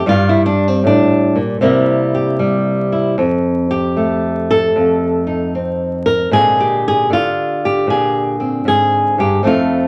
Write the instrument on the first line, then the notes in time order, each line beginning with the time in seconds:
nylon-string guitar
0.06 G2 G3 F4
0.29 E4
0.46 D4
0.68 C4
0.84 A2 D4
1.36 A#2
1.61 C3 G3 A#3 E4 A#4
2.15 G4
2.39 G3
2.92 E4
3.18 F2
3.71 G4
3.97 A3
4.51 A4
4.76 F2
5.27 D#4
5.55 C4
6.06 A#4
6.31 A#2 D3 G#3 C4 G#4
6.60 G4
6.88 G#4
7.10 D3 F4
7.65 G4
7.87 A#2 G#4
8.40 C4
8.65 G#2 G#4
9.18 G2 G4
9.43 F2 A3 C4 D#4
9.47 F4